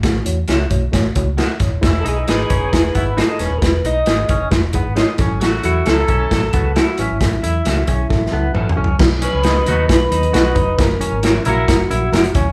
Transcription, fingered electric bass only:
X:1
M:4/4
L:1/16
Q:1/4=134
K:Alyd
V:1 name="Fingered electric bass" clef=bass
A,,,2 E,,2 C,,2 B,,,2 A,,,2 C,,3 z A,,, D,,, | E,,,2 B,,,2 G,,,2 F,,,2 E,,,2 G,,,3 z E,,, D,,, | E,,,2 B,,,2 G,,,2 F,,,2 E,,,3 G,,,2 z A,,, G,,, | A,,,2 E,,2 C,,2 B,,,2 A,,,2 C,,3 z A,,, G,,, |
A,,,2 E,,2 C,,2 B,,,2 A,,,2 C,,2 A,,, z B,,, C,, | B,,,3 C,,3 D,,2 B,,,2 D,,2 B,,,2 =F,,,2 | F,,,3 G,,,3 ^A,,,2 F,,,2 A,,,2 F,,,2 D,,,2 |]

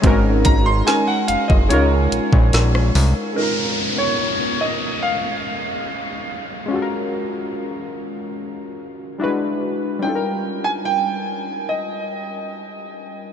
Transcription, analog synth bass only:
X:1
M:4/4
L:1/16
Q:1/4=72
K:Db
V:1 name="Analog synth bass" clef=bass
A,,,4 z2 G,,, G,,, D,,2 B,,, B,,, B,,,2 C,, z | z16 | z16 | z16 |]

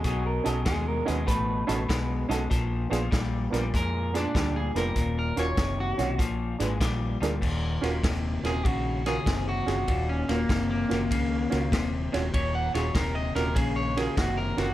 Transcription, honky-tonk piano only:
X:1
M:4/4
L:1/16
Q:"Swing" 1/4=98
K:Ebm
V:1 name="Honky-tonk piano"
z2 [D^D^F=A] z3 [_D^DF=B] z3 [_D^DFA] z3 [_D^DFA] z | z2 [C=DFA] z3 [CDFB] z3 [CDFA] z3 [CDFB] z | z2 [DFGB] z3 [DFGd] z3 [=DFAc] z3 [DFAB] z | z2 [DFGB] z3 [DFGB] z3 [DFGB] z3 [DFGA] z |
z2 [DFGB] z3 [DFGB] z3 [DFGB] z3 [DFGd] z | z2 [DFGA] z3 [DFGB] z3 [DFGB] z3 [DFGB] z |]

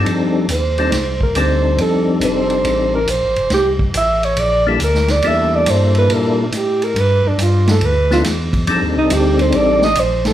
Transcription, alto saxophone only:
X:1
M:4/4
L:1/8
Q:"Swing" 1/4=139
K:F
V:1 name="Alto saxophone"
z2 c3 B c2 | A z c3 B c2 | G z e _d =d G B d | e d c =B _B D G B |
=B D F A B F z2 | z _E G c d _e c A |]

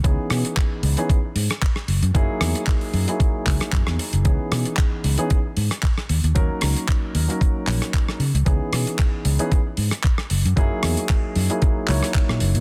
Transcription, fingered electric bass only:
X:1
M:4/4
L:1/16
Q:"Swing 16ths" 1/4=114
K:C#dor
V:1 name="Fingered electric bass" clef=bass
z2 B,, z3 C,, z3 G,, z3 F,,, F,, | F,, z E,, z3 F,, z3 C,, z F,, E,, z F,,, | C,, z B,, z3 C,, z3 G,, z3 D,, D,, | D,, z C,, z3 D,, z3 A,,, z3 C, C,, |
C,, z B,, z3 C,, z3 G,, z3 F,,, F,, | F,, z E,, z3 F,, z3 C,, z2 A,, F,,, A,, |]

